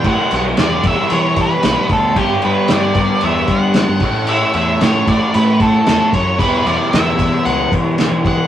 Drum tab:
CC |xxxxxxxx|xxxxxxxx|xxxxxxxx|xxxxxxxx|
SD |--o---o-|--o---o-|--o---o-|--o---o-|
BD |o--o-o-o|o--o-o-o|---o-o-o|o--o-o-o|